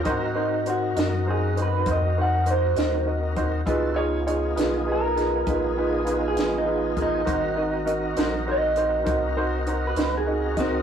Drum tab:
HH |x-xx-xx-xx-x|x-xx-xx-xx-x|x-xx-xx-xx-x|
SD |---o-----o--|---o-o---o--|---o-----o-o|
BD |o-----o----o|o-----o----o|o-----o----o|